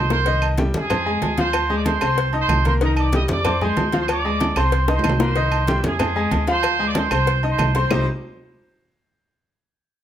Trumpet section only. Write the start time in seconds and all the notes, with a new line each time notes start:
0.12 C5 C6
0.75 G#4 G#5
1.39 C5 C6
1.75 D5 D6
1.85 C5 C6
2.02 C5 C6
2.39 C5 C6
2.65 C5 C6
2.82 A#4 A#5
2.98 D5 D6
3.14 D#5 D#6
3.30 D5 D6
3.62 C5 C6
4.00 C5 C6
4.10 D5 D6
4.57 C5 C6
4.94 C5 C6
5.20 C5 C6
5.85 G#4 G#5
6.49 C5 C6
6.86 D5 D6
6.96 C5 C6
7.11 C5 C6
7.49 C5 C6
7.75 C5 C6
7.91 C5